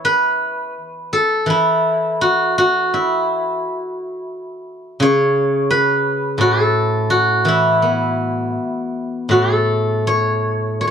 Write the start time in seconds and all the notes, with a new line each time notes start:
Already playing: E3 E4 C#5
0.05 B4
1.13 A4
1.46 E3 E4
2.21 F#4
2.58 F#4
2.94 E4
5.00 C#3 C#5
5.71 B4
6.38 A2 F#4
6.62 A4
7.10 F#4
7.45 E3 E4
7.82 B3
9.29 A2 F#4
9.54 A4
10.07 C#5
10.81 C#5
10.87 C#5